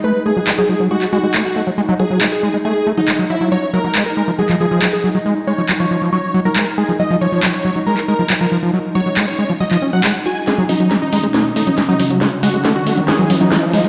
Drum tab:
HH |----------------|----------------|----------------|----------------|
CP |----x----x--x---|----x-------x---|----x----x--x---|----x-------x---|
SD |----------------|----------------|----------------|----------------|

HH |----------------|----------------|x-oxx-oxx-oxx-ox|x-oxx-oxx-oxx-ox|
CP |----x----x--x---|----x----x--x---|----------------|----------------|
SD |----------------|----------------|o---o---o---o---|o---o---o---o---|